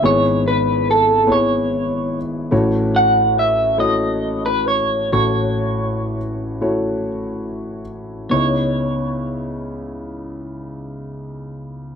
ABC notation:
X:1
M:6/8
L:1/16
Q:3/8=43
K:C#m
V:1 name="Clean electric guitar"
c2 B2 A2 c4 z2 | z2 f2 e2 d3 B c2 | c8 z4 | c12 |]
V:2 name="Grand piano"
[B,EGc]4 z2 [B,EGc]4 z2 | [A,EFc]4 z2 [A,EFc]4 z2 | [A,EFc]4 z2 [A,EFc]4 z2 | [B,DEc]12 |]
V:3 name="Grand piano" clef=bass
[G,,,G,,]12 | [A,,,A,,]12 | [A,,,A,,]12 | C,,12 |]